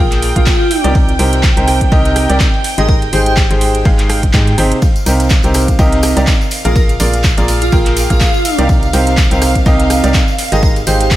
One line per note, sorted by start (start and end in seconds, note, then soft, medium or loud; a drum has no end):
0.00 0.33 A#1 loud
0.00 0.33 A#3 loud
0.00 0.33 F4 medium
0.00 0.33 G#4 loud
0.00 0.33 A#4 loud
0.00 0.33 G5 loud
0.00 4.83 G5 medium
0.11 clap soft
0.11 closed hi-hat medium
0.22 open hi-hat loud
0.22 ride medium
0.36 0.49 A#1 loud
0.36 0.51 A#3 medium
0.36 0.84 F4 loud
0.36 0.51 F4 medium
0.36 0.51 G#4 medium
0.36 0.51 A#4 medium
0.36 0.51 F5 medium
0.36 kick medium
0.36 closed hi-hat medium
0.46 kick loud
0.46 snare loud
0.46 clap loud
0.46 ride medium
0.71 open hi-hat loud
0.71 ride medium
0.84 1.17 C2 loud
0.84 1.10 C3 medium
0.84 1.10 D#4 medium
0.84 1.10 G4 medium
0.84 1.10 A#4 medium
0.84 1.10 D5 loud
0.84 closed hi-hat medium
0.95 kick loud
0.95 ride medium
1.09 closed hi-hat soft
1.19 1.54 C2 loud
1.19 1.46 C3 medium
1.19 1.46 D#4 medium
1.19 1.46 G4 medium
1.19 1.46 A#4 medium
1.19 1.46 C5 medium
1.19 open hi-hat loud
1.19 ride medium
1.33 snare soft
1.33 closed hi-hat medium
1.43 kick loud
1.43 snare loud
1.43 clap loud
1.43 ride medium
1.57 1.90 C2 loud
1.57 1.89 C3 medium
1.57 1.89 D#4 medium
1.57 1.89 G4 medium
1.57 1.89 A#4 medium
1.57 1.89 C5 medium
1.57 closed hi-hat medium
1.68 cross-stick medium
1.68 open hi-hat loud
1.68 ride medium
1.81 kick medium
1.81 closed hi-hat medium
1.92 2.27 C2 loud
1.92 2.26 C3 loud
1.92 2.26 D#4 loud
1.92 2.26 G4 medium
1.92 2.26 A#4 loud
1.92 2.26 D#5 loud
1.92 kick loud
1.92 ride medium
2.05 snare medium
2.05 closed hi-hat medium
2.16 cross-stick medium
2.16 open hi-hat loud
2.16 ride medium
2.30 2.42 C2 loud
2.30 2.45 C3 medium
2.30 2.45 D#4 medium
2.30 2.45 G4 medium
2.30 2.45 A#4 medium
2.30 2.45 D5 medium
2.30 snare medium
2.30 closed hi-hat medium
2.40 kick loud
2.40 snare loud
2.40 clap loud
2.40 ride medium
2.54 ride soft
2.64 open hi-hat loud
2.64 open hi-hat medium
2.64 ride medium
2.78 3.11 G#1 loud
2.78 3.04 G#3 medium
2.78 3.04 D#4 medium
2.78 3.04 G4 medium
2.78 3.04 G#4 medium
2.78 2.94 A#4 medium
2.78 3.04 D#5 loud
2.78 closed hi-hat medium
2.89 kick loud
2.89 ride medium
3.02 closed hi-hat soft
3.02 ride soft
3.13 3.48 G#1 loud
3.13 3.39 G#3 medium
3.13 3.39 D#4 medium
3.13 3.21 G4 medium
3.13 3.39 G4 medium
3.13 3.39 G#4 medium
3.13 3.39 C5 medium
3.13 open hi-hat loud
3.13 ride medium
3.26 3.33 G4 medium
3.26 closed hi-hat medium
3.37 kick loud
3.37 snare loud
3.37 clap loud
3.37 ride medium
3.50 3.83 G#1 loud
3.50 3.83 G#3 medium
3.50 3.83 D#4 medium
3.50 3.83 G4 medium
3.50 3.83 G#4 medium
3.50 3.83 C5 medium
3.50 closed hi-hat soft
3.61 open hi-hat loud
3.61 ride medium
3.75 closed hi-hat medium
3.85 4.32 G#1 loud
3.85 4.20 G#3 loud
3.85 4.20 D#4 loud
3.85 4.20 G4 medium
3.85 4.20 G#4 medium
3.85 4.20 F5 loud
3.85 kick loud
3.85 ride medium
3.99 clap soft
3.99 closed hi-hat medium
4.09 cross-stick medium
4.09 open hi-hat loud
4.09 ride medium
4.23 kick medium
4.23 closed hi-hat medium
4.33 4.56 G#2 loud
4.33 4.51 G#3 medium
4.33 4.51 D#4 medium
4.33 4.51 G4 medium
4.33 4.51 G#4 medium
4.33 4.51 D#5 medium
4.33 kick loud
4.33 snare loud
4.33 clap loud
4.33 ride medium
4.47 closed hi-hat soft
4.58 4.73 G#1 loud
4.58 4.75 C3 medium
4.58 4.75 D#4 medium
4.58 4.75 G4 medium
4.58 4.75 G#4 medium
4.58 4.75 C5 medium
4.58 open hi-hat loud
4.58 ride medium
4.72 closed hi-hat medium
4.82 11.16 F5 medium
4.82 kick loud
4.82 ride medium
4.82 tambourine medium
4.96 closed hi-hat soft
4.96 tambourine soft
5.06 5.41 C2 loud
5.06 5.33 C3 medium
5.06 5.33 D#4 medium
5.06 5.33 G4 medium
5.06 5.33 A#4 medium
5.06 5.33 C5 medium
5.06 open hi-hat loud
5.06 ride medium
5.06 tambourine loud
5.20 snare soft
5.20 closed hi-hat medium
5.20 tambourine soft
5.30 kick loud
5.30 snare loud
5.30 clap loud
5.30 ride medium
5.30 tambourine medium
5.43 5.77 C2 loud
5.43 5.76 C3 medium
5.43 5.76 D#4 medium
5.43 5.76 G4 medium
5.43 5.76 A#4 medium
5.43 5.76 C5 medium
5.43 closed hi-hat soft
5.43 tambourine soft
5.54 cross-stick medium
5.54 open hi-hat loud
5.54 ride medium
5.54 tambourine medium
5.68 kick medium
5.68 closed hi-hat medium
5.68 tambourine soft
5.79 6.14 C2 loud
5.79 6.13 C3 loud
5.79 6.13 D#4 loud
5.79 6.13 G4 medium
5.79 6.13 A#4 medium
5.79 6.13 D#5 loud
5.79 kick loud
5.79 ride medium
5.79 tambourine medium
5.92 snare medium
5.92 closed hi-hat medium
6.03 cross-stick medium
6.03 open hi-hat loud
6.03 ride medium
6.03 tambourine loud
6.16 6.29 C2 loud
6.16 6.32 C3 medium
6.16 6.32 D#4 medium
6.16 6.32 G4 medium
6.16 6.32 A#4 medium
6.16 6.32 D5 medium
6.16 snare medium
6.16 closed hi-hat medium
6.16 tambourine soft
6.27 kick loud
6.27 snare loud
6.27 clap loud
6.27 ride medium
6.27 tambourine medium
6.41 ride soft
6.41 tambourine soft
6.51 open hi-hat medium
6.51 open hi-hat loud
6.51 ride medium
6.51 tambourine medium
6.65 6.98 A#1 loud
6.65 6.91 A#3 medium
6.65 6.91 F4 medium
6.65 6.91 G#4 medium
6.65 6.91 A#4 medium
6.65 6.81 A#4 medium
6.65 6.91 F5 loud
6.65 closed hi-hat medium
6.65 tambourine soft
6.76 kick loud
6.76 ride medium
6.76 tambourine medium
6.89 closed hi-hat soft
6.89 ride soft
6.89 tambourine soft
7.00 7.35 A#1 loud
7.00 7.26 A#3 medium
7.00 7.26 F4 medium
7.00 7.26 G#4 medium
7.00 7.26 A#4 medium
7.00 7.26 D5 medium
7.00 open hi-hat loud
7.00 ride medium
7.00 tambourine medium
7.13 closed hi-hat medium
7.13 tambourine soft
7.23 kick loud
7.23 snare loud
7.23 clap loud
7.23 ride medium
7.23 tambourine medium
7.38 7.70 A#1 medium
7.38 7.70 A#3 medium
7.38 7.70 F4 medium
7.38 7.70 G#4 medium
7.38 7.70 A#4 medium
7.38 7.70 D5 medium
7.38 closed hi-hat medium
7.38 tambourine soft
7.48 open hi-hat loud
7.48 ride medium
7.48 tambourine medium
7.61 7.78 F4 loud
7.61 closed hi-hat medium
7.61 tambourine soft
7.72 8.07 A#1 loud
7.72 8.07 A#3 loud
7.72 8.07 F4 loud
7.72 8.07 G#4 medium
7.72 8.07 A#4 medium
7.72 8.07 G5 loud
7.72 kick loud
7.72 ride medium
7.72 tambourine medium
7.86 clap soft
7.86 closed hi-hat medium
7.97 open hi-hat loud
7.97 ride medium
7.97 tambourine medium
8.10 8.23 A#1 loud
8.10 8.26 A#3 medium
8.10 8.26 F4 medium
8.10 8.59 F4 loud
8.10 8.26 G#4 medium
8.10 8.26 A#4 medium
8.10 8.26 F5 loud
8.10 kick medium
8.10 closed hi-hat medium
8.10 tambourine soft
8.20 kick loud
8.20 snare loud
8.20 clap loud
8.20 ride medium
8.20 tambourine soft
8.34 tambourine soft
8.45 open hi-hat loud
8.45 ride medium
8.45 tambourine loud
8.58 8.91 C2 loud
8.58 8.84 C3 medium
8.58 8.85 D#4 medium
8.58 8.85 G4 medium
8.58 8.85 A#4 medium
8.58 8.84 D5 loud
8.58 closed hi-hat medium
8.58 tambourine soft
8.69 kick loud
8.69 ride medium
8.69 tambourine soft
8.82 closed hi-hat soft
8.82 tambourine soft
8.93 9.28 C2 loud
8.93 9.20 C3 medium
8.93 9.20 D#4 medium
8.93 9.20 G4 medium
8.93 9.20 A#4 medium
8.93 9.20 C5 medium
8.93 open hi-hat loud
8.93 ride medium
8.93 tambourine medium
9.06 snare soft
9.06 closed hi-hat medium
9.06 tambourine soft
9.17 kick loud
9.17 snare loud
9.17 clap loud
9.17 ride medium
9.17 tambourine medium
9.31 9.64 C2 loud
9.31 9.63 C3 medium
9.31 9.63 D#4 medium
9.31 9.63 G4 medium
9.31 9.63 A#4 medium
9.31 9.63 C5 medium
9.31 closed hi-hat medium
9.31 tambourine soft
9.42 cross-stick medium
9.42 open hi-hat loud
9.42 ride medium
9.42 tambourine medium
9.55 kick medium
9.55 closed hi-hat medium
9.55 tambourine soft
9.66 10.01 C2 loud
9.66 10.00 C3 loud
9.66 10.00 D#4 medium
9.66 10.00 G4 medium
9.66 10.00 A#4 loud
9.66 10.00 D#5 loud
9.66 kick loud
9.66 ride medium
9.66 tambourine medium
9.80 snare medium
9.80 closed hi-hat medium
9.90 cross-stick medium
9.90 open hi-hat loud
9.90 ride medium
9.90 tambourine loud
10.04 10.16 C2 loud
10.04 10.19 C3 medium
10.04 10.19 D#4 medium
10.04 10.19 G4 medium
10.04 10.19 A#4 medium
10.04 10.19 D5 medium
10.04 snare medium
10.04 closed hi-hat medium
10.04 tambourine soft
10.14 kick loud
10.14 snare loud
10.14 clap loud
10.14 ride medium
10.14 tambourine soft
10.28 ride soft
10.28 tambourine soft
10.38 open hi-hat loud
10.38 open hi-hat medium
10.38 ride medium
10.38 tambourine medium
10.52 10.85 G#1 loud
10.52 10.78 G#3 medium
10.52 10.78 D#4 medium
10.52 10.78 G4 medium
10.52 10.78 G#4 medium
10.52 10.68 A#4 loud
10.52 10.78 D#5 loud
10.52 closed hi-hat medium
10.52 tambourine soft
10.63 kick loud
10.63 ride medium
10.63 tambourine medium
10.76 closed hi-hat soft
10.76 ride soft
10.76 tambourine soft
10.87 11.16 G#1 loud
10.87 11.13 G#3 medium
10.87 11.13 D#4 medium
10.87 10.96 G4 medium
10.87 11.13 G4 medium
10.87 11.13 G#4 medium
10.87 11.13 C5 medium
10.87 open hi-hat loud
10.87 ride medium
10.87 tambourine loud
11.00 11.07 G4 medium
11.00 closed hi-hat medium
11.00 tambourine soft
11.11 kick loud
11.11 snare loud
11.11 clap loud
11.11 ride medium
11.11 tambourine medium